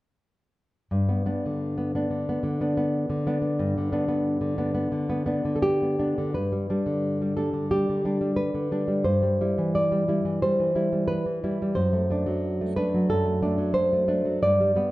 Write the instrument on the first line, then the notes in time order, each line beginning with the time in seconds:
nylon-string guitar
0.91 G2
1.09 B3
1.26 B3 D4
1.46 D3
1.78 B3
1.95 B3 D4
2.10 D3
2.29 B3
2.43 D3
2.61 B3 D4
2.77 B3
3.10 D3
3.27 B3 D4
3.42 B3
3.59 G2
3.78 D3
3.92 B3 D4
4.08 B3
4.41 D3
4.58 B3 D4
4.75 B3
4.92 D3
5.10 B3
5.26 B3 D4
5.45 D3
5.56 A4
5.62 G4
5.82 B3
5.99 B3 D4
6.18 D3
6.34 G2 B4
6.52 G3
6.70 G3 D4
6.86 D3
7.22 G3
7.37 G3 D4 A4
7.53 D3
7.71 G3 G4
7.89 D3
8.05 G3 D4
8.21 G3
8.36 B4
8.54 D3
8.72 G3 D4
8.88 G3
9.04 G2 C5
9.23 G3
9.41 G3 E4
9.58 E3
9.75 D5
9.92 G3
10.08 G3 E4
10.25 E3
10.42 G3 C5
10.60 E3
10.75 G3 E4
10.92 G3
11.08 B4
11.26 E3
11.44 G3 E4
11.62 G3
11.75 F#2 C5
11.93 A3
12.10 A3 D4
12.26 F#3
12.61 A3
12.76 A3 D4 B4
12.94 F#3
13.10 F#2 A4
13.25 A3
13.42 A3 D4
13.58 F#3
13.74 C5
13.93 A3
14.08 A3 D4
14.25 F#3
14.43 G2 D5
14.60 G3
14.75 G3 B3